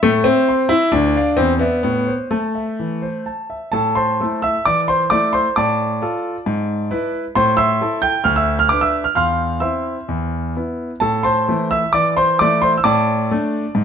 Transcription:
0.03 A2 A3
0.24 C4 E5
0.49 C6
0.69 E4 E5
0.92 D2 D4
1.16 D5 F5
1.37 E2 C4
1.59 B3 D5 E5
1.83 A2 B3
2.07 C5
2.31 A3 A5
2.55 E5
2.79 E3
3.02 C5
3.26 A5
3.50 E5
3.72 A2 A4 A5
3.95 C5 A5 C6
4.20 A3 E4 A4
4.42 E5 E6
4.65 E3 D5 D6
4.88 C5 C6
5.10 A3 E4 A4 D5 D6
5.33 C5 C6
5.56 A2 D5 A5 D6
6.02 F4 A4
6.46 G#2
6.91 E4 B4
7.35 A2 C5 C6
7.57 E5 C6 E6
7.81 E4 A4
8.02 G5 G6
8.24 D2 F6
8.36 E5 E6
8.59 F6
8.69 D4 B4 D6
8.81 E5 E6
9.04 F6
9.15 E2 F5 C6 F6
9.60 C4 E4 E5 C6 E6
10.09 E2
10.56 B3 E4
11.00 A2 A4 A5
11.23 C5 A5 C6
11.48 E3 A3 E4
11.71 E5 E6
11.93 E3 D5 D6
12.17 C5 C6
12.39 E3 A3 E4 D5 D6
12.62 C5 C6
12.78 E6
12.84 A2 D5 A5 D6
13.31 A3 D4
13.75 G#2

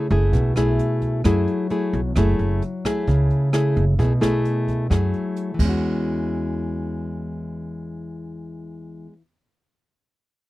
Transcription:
Already playing: C#3
0.10 F#1 A3 E4 G#4, kick, closed hi-hat
0.33 B1 B2, kick, closed hi-hat
0.56 B1 A3 E4 G#4, cross-stick, closed hi-hat
0.79 closed hi-hat
1.01 kick, closed hi-hat
1.24 F#2 F#3 A3 E4 G#4, kick, cross-stick, closed hi-hat
1.47 closed hi-hat
1.70 A3 E4 G#4, closed hi-hat
1.93 B1, kick, closed hi-hat
2.16 F#1 F#3 A3 E4 G#4, kick, cross-stick, closed hi-hat
2.39 F#1, closed hi-hat
2.62 closed hi-hat
2.85 A3 E4 G#4, kick, cross-stick, closed hi-hat
3.07 C#2 C#3, kick, closed hi-hat
3.30 closed hi-hat
3.53 A3 E4 G#4, cross-stick, closed hi-hat
3.76 F#1, kick, closed hi-hat
3.99 B1 B2 A3 E4 G#4, kick, closed hi-hat
4.21 B1 A3 E4 G#4, cross-stick, closed hi-hat
4.45 closed hi-hat
4.68 kick, closed hi-hat
4.90 F#2 F#3 A3 E4 G#4, kick, cross-stick, closed hi-hat
5.14 closed hi-hat
5.36 closed hi-hat
5.54 E3
5.59 E2 G#3, kick, crash
5.65 C#4
5.69 F#4

